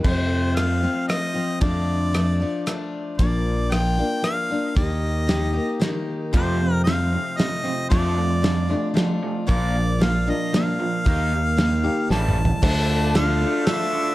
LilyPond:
<<
  \new Staff \with { instrumentName = "Harmonica" } { \time 3/4 \key f \mixolydian \tempo 4 = 114 c''4 f''4 ees''4 | d''2 r4 | d''4 g''4 f''4 | ees''2 r4 |
c''4 f''4 ees''4 | d''2 r4 | d''4 f''8 ees''8 f''4~ | f''2 a''4 |
\key d \minor a''4 f''4 e''4 | }
  \new Staff \with { instrumentName = "Tonewheel organ" } { \time 3/4 \key f \mixolydian r2. | r2. | r2. | r2. |
r2. | r2. | r2. | r2. |
\key d \minor <d' f' a'>2. | }
  \new Staff \with { instrumentName = "Steel-string acoustic guitar" } { \time 3/4 \key f \mixolydian <f, c f a c' f'>4 <f a c' f'>8 <f a c' f'>8 <f a c' f'>8 <f a c' f'>8 | <f, d f a d' f'>4 <f a d' f'>8 <f a d' f'>8 <f a d' f'>4 | <bes, f bes d' f'>4 <f bes d' f'>8 <bes d' f'>8 <f bes d' f'>8 <bes d' f'>8 | <ees bes ees' g'>4 <ees bes ees' g'>8 <bes ees' g'>8 <ees bes ees' g'>4 |
<f, c f a c' f'>4 <f a c' f'>4 <f a c' f'>8 <f a c' f'>8 | <f a d' f'>4 <f a d' f'>8 <a d' f'>8 <f a d' f'>4 | <bes, f bes d' f'>4 <f bes d' f'>8 <bes d' f'>8 <f bes d' f'>4 | <ees bes ees' g'>4 <ees bes ees' g'>8 <bes ees' g'>8 <g cis' e' a'>4 |
\key d \minor <d a d' f' a'>4 <a d' f' a'>8 <d' f' a'>8 <a d' f' a'>4 | }
  \new Staff \with { instrumentName = "Overdriven electric guitar" } { \clef bass \time 3/4 \key f \mixolydian r2. | r2. | r2. | r2. |
<f, c f>8 <f, c>8 <f, c>8 <f, c>8 <f, c>8 <f, c>8 | <f a d'>8 <f a>8 <f a>8 <f a>8 <f a>8 <f a>8 | <bes, f bes>8 <bes, f>8 <bes, f>8 <bes, f>8 <bes, f>8 <bes, f>8 | <ees bes ees'>8 <ees bes>8 <ees bes>8 <ees bes>8 <a, e g>8 <a, e>8 |
\key d \minor d4 d8 a8 d'8 d8 | }
  \new Staff \with { instrumentName = "Fingered electric bass" } { \clef bass \time 3/4 \key f \mixolydian f,2 r4 | f,2 r4 | bes,,2 r4 | ees,2 r4 |
f,2 r4 | f,2 r4 | bes,,2 r4 | ees,2 a,,4 |
\key d \minor d,2 r4 | }
  \new DrumStaff \with { instrumentName = "Drums" } \drummode { \time 3/4 <cymc bd>4 <hh ss>4 <hh ss>4 | <hh bd>4 <hh ss>4 <hh ss>4 | <hh bd>4 <hh ss>4 <hh ss>4 | <hh bd>4 <hh sn>4 <hh sn>4 |
<hh bd>4 <hh sn>4 <hh sn>4 | <hh bd>4 <hh sn>4 <hh sn>4 | <hh bd>4 <hh sn>4 <hh sn>4 | <hh bd>4 <hh sn>4 \tuplet 3/2 { sn8 toml8 tomfh8 } |
<cymc bd>4 <hh sn>4 <hh sn>4 | }
>>